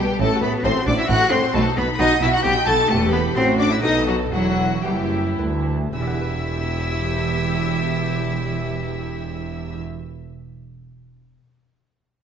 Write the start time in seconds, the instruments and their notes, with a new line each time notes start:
Already playing: lute B2 D4 G4, cello G3, violin section G4 G5
0.09 viola section G4
0.19 double bass section A1, lute A2, cello section A2, cello A3, violin section A4 A5, viola section A4
0.32 viola section F#4
0.41 double bass section A1, cello section A2, lute A2, cello B3, viola section A4, violin section B4 B5
0.54 viola section F#4
0.63 double bass section A1, cello section A2, lute A2 C4 F#4, cello C4, viola section A4, violin section C5 C6
0.76 viola section F#4
0.85 double bass section A1, lute A2, cello section A2, cello D4, viola section A4, violin section D5 D6
0.97 cello E4, viola section F#4, violin section E5 E6
1.08 double bass section A1, lute A2 C4 F#4, cello section A2, cello F#4, viola section A4, violin section F#5 F#6
1.20 viola section F#4
1.31 double bass section A1, lute A2, cello section A2, cello C4, viola section A4, violin section C5 C6
1.43 viola section F#4
1.53 double bass section B1, cello section B2, lute B2, cello A3, viola section F#4, violin section A4 A5
1.66 viola section D#4
1.76 double bass section B1, lute B2, cello section B2, cello B3, viola section F#4, violin section B4 B5
1.88 viola section D#4
1.98 double bass section B1, lute B2 B3 D#4 F#4, cello section B2, cello D#4, viola section F#4, violin section D#5 D#6
2.12 viola section D#4
2.21 double bass section B1, lute B2, cello section B2, cello E4, viola section F#4, violin section E5 E6
2.33 viola section D#4, cello F#4, violin section F#5 F#6
2.43 double bass section B1, lute B2 B3 D#4 F#4, cello section B2, viola section F#4, cello G4, violin section G5 G6
2.57 viola section D#4
2.66 double bass section B1, lute B2, cello section B2, viola section F#4, cello A4, violin section A5 A6
2.79 viola section D#4
2.89 double bass section E1, lute E2 B3 E4 G4, cello section E2, cello A3, viola section G4, violin section A4 A5
3.12 cello B3, violin section B4 B5
3.35 double bass section A1, lute A2 A3 C4 F#4, cello section A2, cello C4, viola section F#4, violin section C5 C6
3.59 cello D4, violin section D5 D6
3.70 cello E4, violin section E5 E6
3.82 double bass section B1, lute B2 A3 B3 F#4, cello section B2, cello D#4, viola section A4, violin section D#5 D#6
4.07 cello F#3, violin section F#4 F#5
4.32 double bass section E1, lute E2, cello section E2, cello F#3, viola section E4, violin section F#4 F#5
4.84 double bass section F#1, lute F#2 B3 E4, cello section F#2, cello G3, viola section E4, violin section G4 G5
5.38 cello section D2, lute D2 B3 E4, double bass section D2
5.93 double bass section E1, cello section E2, lute E3, cello E4, viola section G4, violin section E5 E6
6.01 lute G3
6.07 lute B3
6.14 lute E4
6.21 lute B4